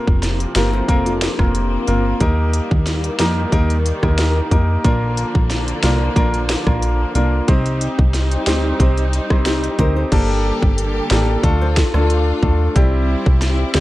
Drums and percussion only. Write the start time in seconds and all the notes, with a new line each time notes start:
0.07 kick
0.23 snare, closed hi-hat
0.40 closed hi-hat
0.55 finger snap, snare, closed hi-hat
0.88 kick, closed hi-hat
1.06 closed hi-hat
1.21 finger snap, snare, closed hi-hat
1.39 kick, cross-stick
1.55 closed hi-hat
1.87 closed hi-hat
2.20 kick, closed hi-hat
2.53 closed hi-hat
2.71 kick
2.86 snare, closed hi-hat
3.04 closed hi-hat
3.19 finger snap, snare, closed hi-hat
3.52 kick, closed hi-hat
3.70 closed hi-hat
3.86 closed hi-hat
4.03 kick, cross-stick
4.18 finger snap, snare, closed hi-hat
4.51 kick, closed hi-hat
4.84 kick, closed hi-hat
5.17 closed hi-hat
5.35 kick
5.50 snare, closed hi-hat
5.68 closed hi-hat
5.83 finger snap, snare, closed hi-hat
6.16 kick, closed hi-hat
6.34 closed hi-hat
6.49 finger snap, snare, closed hi-hat
6.67 kick, cross-stick
6.82 closed hi-hat
7.15 closed hi-hat
7.48 kick, closed hi-hat
7.66 closed hi-hat
7.81 closed hi-hat
7.99 kick
8.14 snare, closed hi-hat
8.31 closed hi-hat
8.46 finger snap, snare, closed hi-hat
8.80 kick, closed hi-hat
8.97 closed hi-hat
9.13 closed hi-hat
9.30 kick, cross-stick
9.45 finger snap, snare, closed hi-hat
9.64 closed hi-hat
9.79 kick, closed hi-hat
10.12 kick, closed hi-hat, crash
10.62 kick
10.78 closed hi-hat
11.10 finger snap, snare
11.43 kick, closed hi-hat
11.76 finger snap, kick, snare
11.94 cross-stick
12.10 closed hi-hat
12.43 kick
12.76 kick, closed hi-hat
13.26 kick
13.42 snare, closed hi-hat
13.74 finger snap, snare